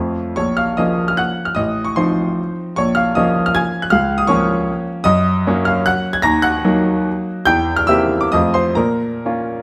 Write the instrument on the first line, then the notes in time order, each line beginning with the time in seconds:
grand piano
Already playing: F2 F3 A3 C4 C#5 F5
0.36 A#1 C#5 C#6
0.57 F5 F6
0.77 F3 A#3 C#4 D#5 D#6
1.08 F6
1.17 F#5 F#6
1.45 F6
1.55 A1 D#5 D#6
1.85 C#6
1.96 F3 C4 D#4 C5 C6
2.76 A#1 C#5 C#6
2.95 F5 F6
3.15 F3 A#3 C#4 D#5 D#6
3.46 F6
3.55 G#5 G#6
3.82 F#6
3.90 C#2 F5 F6
4.18 D#6
4.27 F3 A#3 C#4 C#5 C#6
5.04 F#2 D#5 D#6
5.47 F#3 A#3 C#4
5.65 F5 F6
5.86 F#5 F#6
6.13 G#6
6.22 D#2 A#5 A#6
6.42 F#5 F#6
6.64 F#3 A#3 D#4
7.46 E2 G5 G6
7.76 F6
7.87 A#3 C4 G4 E5 E6
8.21 D6
8.32 F2 A3 C4 F4 D#5 D#6
8.54 C5 C6
8.75 A#2 A#4 A#5
9.25 A#3 C#4 F4